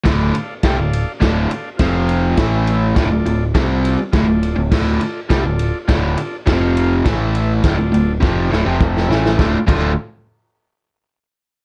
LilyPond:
<<
  \new Staff \with { instrumentName = "Transistor combo organ" } { \time 4/4 \key d \minor \tempo 4 = 103 <a' d'' f''>4 <a' d'' f''>4 <a' d'' f''>4 <f' c'' f''>4 | <e' a' e''>4 <f' a' d''>4 <f' a' d''>4 <f' a' d''>4 | <f' a' d''>4 <f' a' d''>4 <f' a' d''>4 <f' c'' f''>4 | <e' a' e''>4 <f' a' d''>4 <f' a' d''>4 <f' a' e''>4 |
<f' a' d''>8 r2. r8 | }
  \new Staff \with { instrumentName = "Overdriven electric guitar" } { \clef bass \time 4/4 \key d \minor <d, a, d>8 r8 <c g>16 <d, a,>8 r16 <d, a, d>8 r8 <f, c f>4 | <a, e a>4 <d, a,>16 <d, a,>16 <d, a,>8 <c g c'>8. r16 <d, a,>16 <d, a,>8 <d, a,>16 | <d, a, d>8 r8 <c g>16 <d, a,>8 r16 <d, a, d>8 r8 <f, c f>4 | <a, e a>4 <d, a,>16 <d, a,>16 <d, a,>8 <f, c f>8 <d, a,>16 <f, c f>8. <a, e a>8 |
<d, a, d a f'>16 r16 <d, a, d a f'>8 r2. | }
  \new Staff \with { instrumentName = "Picked electric bass" } { \clef bass \time 4/4 \key d \minor d,,8 r8 c,16 d,,8 r16 d,,8 r8 f,,4 | a,,4 d,,16 d,,16 d,,8 c,8. r16 d,,16 d,,8 d,,16 | d,,8 r8 c,16 d,,8 r16 d,,8 r8 f,,4 | a,,4 d,,16 d,,16 d,,8 f,,8 d,,16 f,,8. a,,8 |
d,,16 r16 d,,8 r2. | }
  \new DrumStaff \with { instrumentName = "Drums" } \drummode { \time 4/4 <bd cymr sn>8 cymr8 <bd cymr sn>8 cymr8 <bd cymr sn>8 cymr8 <bd cymr sn>8 cymr8 | <bd cymr sn>8 cymr8 <bd cymr sn>8 cymr8 <bd cymr sn>8 cymr8 <bd cymr sn>8 cymr8 | <cymc bd sn>8 cymr8 <bd cymr sn>8 cymr8 <bd cymr sn>8 cymr8 <bd cymr sn>8 cymr8 | <bd cymr sn>8 cymr8 <bd cymr sn>8 cymr8 <bd sn>8 sn8 <bd sn>16 sn16 sn16 sn16 |
<bd sn>8 <cymc bd>8 r4 r4 r4 | }
>>